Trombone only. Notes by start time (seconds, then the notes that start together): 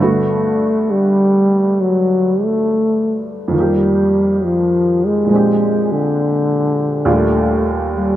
0.03 A3
0.91 G3
1.81 F#3
2.44 A3
3.57 G3
4.44 F3
5.06 G#3
5.92 D3
7.09 A3
7.98 G3